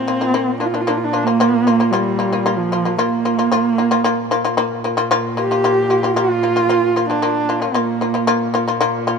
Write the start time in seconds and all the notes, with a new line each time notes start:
Already playing: A#2 C4
0.08 A#3 F4
0.21 A#3 F4
0.34 A#3 F4
0.60 A#3 D4 F4
0.66 F4
0.74 A#3 D4 F4
0.81 F4
0.87 A#3 D4 F4
0.97 F4
1.05 D4
1.13 A#3 F4
1.24 A#3 F4
1.40 A#3 F4
1.67 A#3 F4
1.80 A#3 F4
1.91 G3 A#3 F4
2.19 A#3 F4
2.32 A#3 F4
2.46 A#3 F4
2.57 F3
2.72 A#3 F4
2.85 A#3 F4
2.98 A#3 F4
3.25 A#3 F4
3.39 A#3 F4
3.51 A#2 A#3 F4
3.78 A#3 F4
3.91 A#3 F4
4.04 A#3 F4
4.31 A#3 F4
4.45 A#3 F4
4.57 A#3 F4
4.84 A#3 F4
4.97 A#3 F4
5.11 A#3 F4
5.37 A#3 F4 G4
5.51 A#3 F4
5.64 A#3 F4
5.90 A#3 F4
6.03 A#3 F4
6.16 A#3 F4
6.43 A#3 F4
6.56 A#3 F4
6.69 A#3 F4
6.96 A#3 F4
7.09 A#3 D4 F4
7.22 A#3 F4
7.49 A#3 F4
7.60 A#3 F4
7.74 A#2 A#3 F4
8.01 A#3 F4
8.14 A#3 F4
8.27 A#3 F4
8.54 A#3 F4
8.68 A#3 F4
8.81 A#3 F4
9.07 A#3 F4